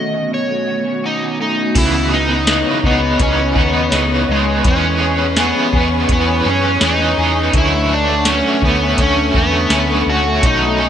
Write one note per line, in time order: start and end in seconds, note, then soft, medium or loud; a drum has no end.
0.00 0.30 B2 medium
0.00 1.72 D#3 medium
0.00 0.47 A3 soft
0.00 1.71 A3 medium
0.00 1.72 B3 medium
0.00 0.12 C#4 medium
0.00 0.65 F#4 medium
0.00 1.71 F#4 medium
0.00 0.34 D#5 medium
0.12 0.84 C#4 soft
0.31 1.83 B2 medium
0.31 1.37 C#5 medium
0.49 1.38 A3 soft
0.67 1.01 F#4 medium
0.85 1.20 C#4 medium
1.03 1.40 D#4 medium
1.03 1.82 F#4 medium
1.21 1.57 C#4 medium
1.39 1.83 A3 medium
1.39 1.77 D#4 medium
1.57 1.93 C#4 soft
1.75 2.62 C#2 loud
1.75 2.11 C#3 medium
1.75 3.18 C#3 medium
1.75 2.12 E3 medium
1.75 2.12 B3 medium
1.75 2.10 E4 loud
1.75 2.10 G#4 medium
1.75 7.50 B4 medium
1.75 7.50 C#5 medium
1.75 4.62 D#5 medium
1.75 10.39 C#6 medium
1.75 kick loud
1.75 closed hi-hat medium
1.75 crash loud
1.93 2.29 B3 medium
2.11 2.46 D#4 medium
2.11 2.48 D#4 medium
2.11 2.87 D#4 loud
2.11 2.47 G#4 medium
2.16 2.47 B3 soft
2.29 2.65 B3 medium
2.47 2.83 C#3 medium
2.47 2.84 E3 medium
2.47 2.84 B3 medium
2.47 2.82 D#4 medium
2.47 2.84 D#4 medium
2.47 2.81 G#4 medium
2.47 snare loud
2.47 closed hi-hat medium
2.47 tambourine medium
2.65 3.01 B3 medium
2.83 3.15 C#2 loud
2.83 3.22 B3 medium
2.83 3.55 D#4 medium
2.83 3.21 D#4 medium
2.83 3.19 G#4 medium
2.83 kick loud
2.87 3.20 B3 soft
3.02 3.37 B3 medium
3.19 3.52 C#2 loud
3.19 4.64 C#3 medium
3.19 3.56 E3 medium
3.19 3.57 B3 medium
3.19 3.58 C#4 medium
3.19 kick loud
3.19 closed hi-hat medium
3.38 3.74 B3 medium
3.55 3.88 D#2 medium
3.55 4.32 B3 loud
3.55 3.91 D#4 medium
3.55 3.93 D#4 medium
3.55 3.92 G#4 medium
3.55 kick loud
3.60 3.92 B3 soft
3.74 4.10 B3 medium
3.91 4.24 C#2 loud
3.91 4.28 C#3 medium
3.91 4.28 E3 medium
3.91 4.29 B3 medium
3.91 4.27 D#4 medium
3.91 4.28 D#4 medium
3.91 4.26 G#4 medium
3.91 snare loud
3.91 closed hi-hat medium
3.91 tambourine medium
4.10 4.46 B3 medium
4.27 4.60 C#2 loud
4.27 4.72 D#4 medium
4.27 4.65 D#4 medium
4.27 4.64 G#4 medium
4.31 4.67 G#3 medium
4.31 4.64 B3 soft
4.46 4.82 B3 medium
4.64 5.51 E2 loud
4.64 5.00 E3 medium
4.64 6.07 E3 medium
4.64 5.01 B3 medium
4.64 5.39 C#4 loud
4.64 4.98 G#4 medium
4.64 7.51 G#5 medium
4.64 kick loud
4.64 closed hi-hat medium
4.82 5.18 C#4 medium
4.99 5.37 C#4 medium
4.99 5.36 G#4 medium
4.99 5.35 G#4 medium
5.04 5.36 B3 medium
5.18 5.54 C#4 medium
5.36 5.72 E3 medium
5.36 5.73 B3 medium
5.36 5.73 C#4 medium
5.36 5.72 G#4 medium
5.36 5.70 G#4 medium
5.36 snare loud
5.36 closed hi-hat medium
5.36 tambourine medium
5.40 6.11 B3 loud
5.55 5.90 C#4 medium
5.72 6.05 E2 loud
5.72 6.10 C#4 soft
5.72 6.08 G#4 medium
5.72 6.43 G#4 medium
5.72 kick loud
5.76 6.08 B3 soft
5.91 6.26 C#4 medium
6.08 6.41 E2 loud
6.08 6.45 E3 medium
6.08 7.53 E3 medium
6.08 6.45 B3 medium
6.08 6.46 C#4 medium
6.08 kick loud
6.08 closed hi-hat medium
6.12 6.48 B3 medium
6.12 6.43 G#4 medium
6.27 6.63 C#4 medium
6.44 6.77 F#2 medium
6.44 6.81 C#4 medium
6.44 6.81 G#4 medium
6.44 6.80 G#4 medium
6.49 6.80 B3 soft
6.49 6.84 C#4 loud
6.63 6.99 C#4 medium
6.80 7.13 E2 loud
6.80 7.17 E3 medium
6.80 7.17 B3 medium
6.80 7.17 C#4 medium
6.80 7.16 G#4 medium
6.80 7.15 G#4 medium
6.80 snare loud
6.80 closed hi-hat medium
6.80 tambourine medium
6.85 7.57 D#4 loud
6.99 7.35 C#4 medium
7.16 7.49 E2 loud
7.16 7.54 C#4 medium
7.16 7.53 G#4 medium
7.16 7.61 G#4 medium
7.21 7.54 B3 soft
7.36 7.72 C#4 medium
7.53 8.40 D2 loud
7.53 7.89 D3 medium
7.53 8.97 D3 medium
7.53 7.90 F#3 medium
7.53 7.90 A3 medium
7.53 7.90 C#4 medium
7.53 7.87 F#4 medium
7.53 10.40 A4 medium
7.53 10.40 C#5 medium
7.53 10.40 F#5 medium
7.53 kick loud
7.53 closed hi-hat medium
7.57 7.93 E4 loud
7.72 8.07 A3 medium
7.88 8.25 F#4 medium
7.93 8.25 A3 medium
7.93 8.29 D4 loud
8.08 8.44 A3 medium
8.25 8.62 D3 medium
8.25 8.62 F#3 medium
8.25 8.62 A3 medium
8.25 8.61 C#4 medium
8.25 8.62 C#4 medium
8.25 8.60 F#4 medium
8.25 snare loud
8.25 closed hi-hat loud
8.25 tambourine medium
8.29 8.65 C#4 medium
8.44 8.79 A3 medium
8.61 8.94 D2 loud
8.61 9.34 C#4 medium
8.61 8.99 C#4 medium
8.61 8.98 F#4 medium
8.61 kick loud
8.65 8.98 A3 medium
8.65 9.01 B3 medium
8.80 9.16 A3 medium
8.97 9.30 D2 loud
8.97 10.42 D3 medium
8.97 9.34 F#3 medium
8.97 9.35 A3 medium
8.97 9.34 C#4 medium
8.97 kick loud
8.97 closed hi-hat medium
9.01 9.33 C#4 loud
9.01 9.32 F#4 medium
9.16 9.52 A3 medium
9.33 9.66 E2 medium
9.33 9.70 C#4 medium
9.33 9.71 C#4 medium
9.33 9.70 F#4 medium
9.33 kick medium
9.37 9.70 A3 soft
9.37 10.10 B3 loud
9.53 9.88 A3 medium
9.70 10.02 D2 medium
9.70 10.06 D3 medium
9.70 10.07 F#3 medium
9.70 10.07 A3 medium
9.70 10.06 C#4 medium
9.70 10.07 C#4 medium
9.70 10.05 F#4 medium
9.70 snare loud
9.70 closed hi-hat medium
9.70 tambourine medium
9.89 10.24 A3 medium
10.06 10.38 D2 loud
10.06 10.78 C#4 medium
10.06 10.43 C#4 medium
10.06 10.42 F#4 medium
10.06 10.45 F#4 loud
10.10 10.43 A3 soft
10.25 10.60 A3 medium
10.42 10.89 B1 loud
10.42 10.78 B2 medium
10.42 10.89 B2 medium
10.42 10.79 D#3 medium
10.42 10.79 F#3 medium
10.42 10.79 A3 medium
10.42 10.78 C#4 medium
10.42 10.77 F#4 medium
10.42 10.89 B4 medium
10.42 10.89 D#5 medium
10.42 10.89 A5 medium
10.42 10.89 C#6 medium
10.42 kick loud
10.42 closed hi-hat medium
10.46 10.89 D#4 loud
10.60 10.89 A3 medium
10.78 10.89 A3 medium
10.78 10.89 C#4 medium
10.78 10.89 F#4 medium
10.82 10.89 F#3 soft